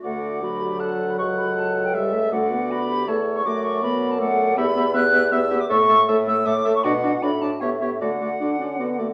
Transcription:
X:1
M:3/4
L:1/16
Q:1/4=158
K:D
V:1 name="Flute"
f4 b4 a3 b | c'2 b2 a3 g e4 | f4 b4 a3 c' | d'2 c'2 b3 a f4 |
b4 f'4 e'3 d' | c'6 e'2 d'3 c' | f4 b2 a2 e4 | f8- f2 z2 |]
V:2 name="Oboe"
d8 f4 | f8 e4 | d8 c4 | d8 d4 |
e2 e2 e2 e2 e2 e2 | e2 e2 e2 e2 e2 e2 | d2 d2 d2 d2 c2 c2 | d2 d2 d2 d2 d2 d2 |]
V:3 name="Clarinet"
F4 F2 G2 A4 | A12 | F4 F2 G2 A4 | F4 F4 A4 |
G2 G2 G2 G2 G2 G2 | A2 A2 A2 A2 A2 A2 | F2 F2 F2 F2 G2 G2 | F2 F2 F2 F2 F2 F2 |]
V:4 name="French horn"
A,4 F,8- | F,8 G,2 A,2 | A,2 B,6 A,4 | A,4 B,4 A,4 |
B,2 B,2 B,2 B,2 B,2 B,2 | A,2 A,2 A,2 A,2 A,2 A,2 | D2 D2 D2 D2 B,2 B,2 | A,2 A,2 D2 C2 B,2 A,2 |]
V:5 name="Bassoon" clef=bass
D,,12 | C,,12 | D,,8 E,,4 | F,,12 |
E,,4 E,,4 E,,4 | A,,4 A,,4 A,,4 | B,,4 A,,4 A,,4 | D,4 D,4 D,4 |]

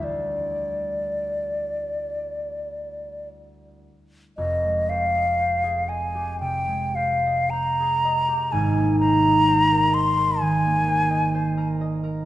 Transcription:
X:1
M:4/4
L:1/16
Q:1/4=59
K:Dm
V:1 name="Flute"
d12 z4 | [K:Fm] e2 f4 a2 g2 f2 b4 | a2 b4 c'2 a6 z2 |]
V:2 name="Harp"
[D,,G,A,EFcde]16 | [K:Fm] [F,,,F,,] A, c e c A e G C, A, c e c A e G | [A,,,A,,] B, c e c B e B E, B, c e c B e B |]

